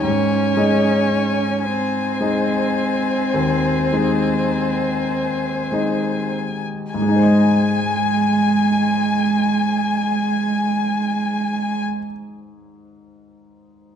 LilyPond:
<<
  \new Staff \with { instrumentName = "Violin" } { \time 12/8 \key aes \major \tempo 4. = 34 aes''4. aes''1~ aes''8 | aes''1. | }
  \new Staff \with { instrumentName = "Violin" } { \time 12/8 \key aes \major des''4. c''1 r8 | aes''1. | }
  \new Staff \with { instrumentName = "Grand piano" } { \time 12/8 \key aes \major aes,8 <aes ees' ees''>4. <aes ees' ees''>4 ees,8 <aes ees' ees''>4. <aes ees' ees''>4 | <aes, aes ees' c'' ees''>1. | }
  \new Staff \with { instrumentName = "Cello" } { \time 12/8 \key aes \major des'4. c'1 r8 | aes1. | }
>>